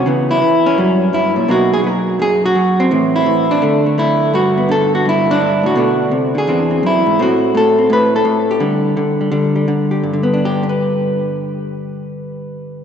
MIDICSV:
0, 0, Header, 1, 2, 480
1, 0, Start_track
1, 0, Key_signature, 1, "major"
1, 0, Tempo, 356506
1, 77, Time_signature, 4, 2, 24, 8
1, 17293, End_track
2, 0, Start_track
2, 0, Title_t, "Hollow-body jazz guitar"
2, 0, Program_c, 0, 26
2, 0, Note_on_c, 0, 61, 72
2, 80, Note_on_c, 0, 49, 75
2, 91, Note_on_c, 0, 52, 47
2, 100, Note_on_c, 0, 59, 51
2, 413, Note_on_c, 0, 64, 86
2, 545, Note_off_c, 0, 52, 0
2, 560, Note_off_c, 0, 49, 0
2, 561, Note_on_c, 0, 52, 58
2, 870, Note_off_c, 0, 61, 0
2, 893, Note_on_c, 0, 61, 86
2, 1018, Note_off_c, 0, 52, 0
2, 1028, Note_off_c, 0, 59, 0
2, 1045, Note_on_c, 0, 42, 69
2, 1049, Note_off_c, 0, 64, 0
2, 1052, Note_on_c, 0, 54, 51
2, 1066, Note_on_c, 0, 55, 45
2, 1518, Note_off_c, 0, 42, 0
2, 1523, Note_on_c, 0, 43, 61
2, 1538, Note_on_c, 0, 64, 84
2, 1830, Note_on_c, 0, 46, 58
2, 1831, Note_off_c, 0, 43, 0
2, 1984, Note_off_c, 0, 54, 0
2, 1991, Note_off_c, 0, 46, 0
2, 1997, Note_on_c, 0, 47, 70
2, 2006, Note_on_c, 0, 54, 51
2, 2007, Note_off_c, 0, 64, 0
2, 2009, Note_off_c, 0, 61, 0
2, 2011, Note_off_c, 0, 55, 0
2, 2017, Note_on_c, 0, 58, 54
2, 2024, Note_on_c, 0, 63, 42
2, 2035, Note_on_c, 0, 66, 91
2, 2325, Note_off_c, 0, 66, 0
2, 2335, Note_on_c, 0, 68, 94
2, 2428, Note_off_c, 0, 68, 0
2, 2461, Note_off_c, 0, 54, 0
2, 2477, Note_on_c, 0, 54, 58
2, 2510, Note_on_c, 0, 70, 98
2, 2954, Note_on_c, 0, 42, 62
2, 2956, Note_off_c, 0, 47, 0
2, 2973, Note_off_c, 0, 70, 0
2, 2986, Note_on_c, 0, 68, 103
2, 3282, Note_off_c, 0, 68, 0
2, 3306, Note_on_c, 0, 66, 97
2, 3423, Note_off_c, 0, 54, 0
2, 3439, Note_on_c, 0, 54, 64
2, 3757, Note_off_c, 0, 58, 0
2, 3767, Note_on_c, 0, 60, 85
2, 3894, Note_off_c, 0, 42, 0
2, 3897, Note_off_c, 0, 54, 0
2, 3910, Note_off_c, 0, 63, 0
2, 3918, Note_on_c, 0, 45, 72
2, 3928, Note_on_c, 0, 52, 53
2, 3934, Note_off_c, 0, 66, 0
2, 4250, Note_on_c, 0, 64, 92
2, 4375, Note_off_c, 0, 52, 0
2, 4391, Note_on_c, 0, 52, 62
2, 4716, Note_off_c, 0, 60, 0
2, 4727, Note_on_c, 0, 62, 89
2, 4853, Note_off_c, 0, 52, 0
2, 4872, Note_on_c, 0, 50, 73
2, 4876, Note_off_c, 0, 45, 0
2, 4886, Note_off_c, 0, 64, 0
2, 4887, Note_on_c, 0, 57, 50
2, 5195, Note_off_c, 0, 57, 0
2, 5200, Note_on_c, 0, 57, 42
2, 5353, Note_off_c, 0, 57, 0
2, 5359, Note_on_c, 0, 57, 57
2, 5373, Note_on_c, 0, 64, 93
2, 5835, Note_on_c, 0, 43, 75
2, 5844, Note_off_c, 0, 62, 0
2, 5844, Note_off_c, 0, 64, 0
2, 5856, Note_on_c, 0, 66, 99
2, 5875, Note_off_c, 0, 57, 0
2, 6159, Note_on_c, 0, 59, 47
2, 6294, Note_off_c, 0, 50, 0
2, 6310, Note_on_c, 0, 50, 58
2, 6325, Note_off_c, 0, 66, 0
2, 6348, Note_on_c, 0, 69, 95
2, 6642, Note_off_c, 0, 69, 0
2, 6662, Note_on_c, 0, 66, 89
2, 6789, Note_off_c, 0, 43, 0
2, 6805, Note_on_c, 0, 43, 63
2, 6812, Note_off_c, 0, 66, 0
2, 6852, Note_on_c, 0, 64, 90
2, 7149, Note_on_c, 0, 62, 103
2, 7272, Note_off_c, 0, 43, 0
2, 7289, Note_on_c, 0, 43, 60
2, 7585, Note_on_c, 0, 45, 60
2, 7592, Note_off_c, 0, 43, 0
2, 7614, Note_off_c, 0, 64, 0
2, 7624, Note_on_c, 0, 66, 87
2, 7740, Note_off_c, 0, 59, 0
2, 7743, Note_off_c, 0, 45, 0
2, 7749, Note_on_c, 0, 47, 75
2, 7751, Note_off_c, 0, 50, 0
2, 7765, Note_on_c, 0, 50, 50
2, 7769, Note_off_c, 0, 62, 0
2, 7774, Note_on_c, 0, 57, 56
2, 7785, Note_on_c, 0, 62, 57
2, 8226, Note_off_c, 0, 47, 0
2, 8232, Note_on_c, 0, 48, 58
2, 8253, Note_off_c, 0, 66, 0
2, 8530, Note_off_c, 0, 50, 0
2, 8544, Note_off_c, 0, 48, 0
2, 8546, Note_on_c, 0, 50, 54
2, 8592, Note_on_c, 0, 68, 87
2, 8703, Note_off_c, 0, 57, 0
2, 8709, Note_off_c, 0, 62, 0
2, 8714, Note_off_c, 0, 50, 0
2, 8716, Note_on_c, 0, 40, 71
2, 8727, Note_on_c, 0, 52, 49
2, 8735, Note_on_c, 0, 60, 48
2, 8742, Note_on_c, 0, 62, 50
2, 9016, Note_off_c, 0, 60, 0
2, 9032, Note_on_c, 0, 60, 44
2, 9191, Note_off_c, 0, 40, 0
2, 9196, Note_on_c, 0, 42, 58
2, 9217, Note_off_c, 0, 68, 0
2, 9242, Note_on_c, 0, 64, 85
2, 9505, Note_off_c, 0, 42, 0
2, 9510, Note_on_c, 0, 44, 59
2, 9657, Note_off_c, 0, 60, 0
2, 9659, Note_off_c, 0, 52, 0
2, 9667, Note_off_c, 0, 62, 0
2, 9676, Note_off_c, 0, 44, 0
2, 9685, Note_on_c, 0, 45, 74
2, 9695, Note_on_c, 0, 57, 53
2, 9697, Note_off_c, 0, 64, 0
2, 9703, Note_on_c, 0, 60, 51
2, 9727, Note_on_c, 0, 66, 92
2, 10143, Note_off_c, 0, 45, 0
2, 10159, Note_on_c, 0, 45, 64
2, 10196, Note_on_c, 0, 69, 96
2, 10476, Note_off_c, 0, 60, 0
2, 10482, Note_on_c, 0, 60, 40
2, 10617, Note_off_c, 0, 45, 0
2, 10633, Note_on_c, 0, 45, 66
2, 10654, Note_off_c, 0, 69, 0
2, 10660, Note_off_c, 0, 66, 0
2, 10676, Note_on_c, 0, 71, 101
2, 10966, Note_off_c, 0, 71, 0
2, 10984, Note_on_c, 0, 69, 93
2, 11089, Note_off_c, 0, 45, 0
2, 11105, Note_on_c, 0, 45, 68
2, 11455, Note_on_c, 0, 67, 72
2, 11577, Note_off_c, 0, 57, 0
2, 11582, Note_off_c, 0, 60, 0
2, 11582, Note_on_c, 0, 50, 75
2, 11589, Note_off_c, 0, 45, 0
2, 11593, Note_on_c, 0, 55, 51
2, 11613, Note_off_c, 0, 69, 0
2, 12058, Note_off_c, 0, 50, 0
2, 12074, Note_on_c, 0, 50, 68
2, 12380, Note_off_c, 0, 55, 0
2, 12397, Note_on_c, 0, 55, 44
2, 12527, Note_off_c, 0, 50, 0
2, 12536, Note_off_c, 0, 55, 0
2, 12543, Note_on_c, 0, 50, 73
2, 12552, Note_on_c, 0, 55, 49
2, 12851, Note_off_c, 0, 55, 0
2, 12867, Note_on_c, 0, 55, 46
2, 13015, Note_off_c, 0, 50, 0
2, 13031, Note_on_c, 0, 50, 61
2, 13328, Note_off_c, 0, 67, 0
2, 13344, Note_on_c, 0, 67, 44
2, 13493, Note_off_c, 0, 67, 0
2, 13511, Note_on_c, 0, 43, 62
2, 13629, Note_off_c, 0, 50, 0
2, 13646, Note_on_c, 0, 50, 58
2, 13773, Note_off_c, 0, 55, 0
2, 13779, Note_on_c, 0, 59, 57
2, 13916, Note_on_c, 0, 62, 56
2, 14074, Note_on_c, 0, 67, 77
2, 14301, Note_off_c, 0, 67, 0
2, 14312, Note_off_c, 0, 59, 0
2, 14317, Note_on_c, 0, 67, 60
2, 14392, Note_off_c, 0, 62, 0
2, 14398, Note_on_c, 0, 71, 62
2, 17293, Note_off_c, 0, 43, 0
2, 17293, Note_off_c, 0, 50, 0
2, 17293, Note_off_c, 0, 67, 0
2, 17293, Note_off_c, 0, 71, 0
2, 17293, End_track
0, 0, End_of_file